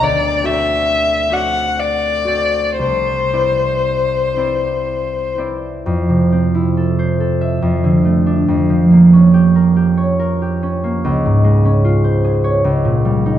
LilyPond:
<<
  \new Staff \with { instrumentName = "Violin" } { \time 3/4 \key d \minor \tempo 4 = 70 d''8 e''4 fis''8 d''4 | c''2~ c''8 r8 | \key bes \major r2. | r2. |
r2. | }
  \new Staff \with { instrumentName = "Harp" } { \time 3/4 \key d \minor <d, fis'>8 <c' fis' a' d''>4 <c' fis' a' d''>4 <c' fis' a' d''>8 | c,8 <c' e' b' d''>4 <c' e' b' d''>4 <c' e' b' d''>8 | \key bes \major f,16 c16 c'16 e'16 a'16 c''16 a'16 e''16 f,16 d16 a16 d'16 | f,16 f16 bes16 des'16 g'16 bes'16 g'16 des''16 bes'16 g'16 des'16 bes16 |
des,16 aes,16 aes16 des'16 f'16 c''16 aes'16 des''16 des,16 bes,16 g16 ees'16 | }
>>